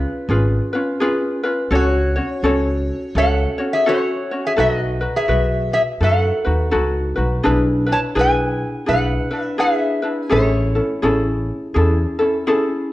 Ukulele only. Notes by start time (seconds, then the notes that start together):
Already playing: C#4 F4 G#4 B4
0.29 C#4 F4 G#4 B4
0.73 C#4 F4 B4
1.00 C#4 F4 G#4 B4
1.43 C#4 F4 B4
1.70 C#4 F#4 A4 C#5
2.16 C#4 F#4 C#5
2.43 C#4 F#4 A4 C#5
3.16 C#4 F#4 A4 C#5
3.58 C#4 F#4 C#5
3.86 C#4 F#4 A4 C#5
4.31 C#4 F#4 C#5
4.57 D#4 F#4 A4 B4
5.01 D#4 F#4 B4
5.28 F#4 B4
6.00 D#4 F#4 A4 B4
6.45 D#4 F#4 B4
6.71 D#4 F#4 A4 B4
7.16 D#4 F#4 B4
7.43 D4 E4 G#4 B4
7.87 D4 E4 B4
8.15 D4 E4 G#4 B4
8.86 D4 E4 G#4 B4
9.31 D4 E4 B4
9.58 D4 E4 G#4 B4
10.02 D4 E4 B4
10.29 C#4 E4 G#4 A4
10.75 C#4 E4 A4
11.02 C#4 E4 G#4 A4
11.74 C#4 E4 G#4 A4
12.19 C#4 E4 A4
12.47 C#4 E4 G#4 A4